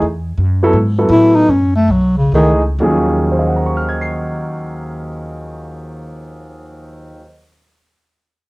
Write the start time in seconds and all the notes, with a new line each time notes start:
0.02 E2
0.38 F#2
0.63 F#3 B3 E4 A4
0.73 G#2
0.99 F#3 B3 E4 A4
1.09 A2 E4
1.35 D#4
1.48 F#2 C#4
1.76 A3
1.88 B1 F#3
2.17 C#3
2.32 C#2 D#3 E3 A3 D#4 G#4
2.79 D#2 D#3 F3 F#3 C#4
2.83 G#4
3.32 C5
3.39 D#5
3.47 F#5
3.56 A#5
3.66 C#6
3.77 F6
3.89 G#6
4.01 C7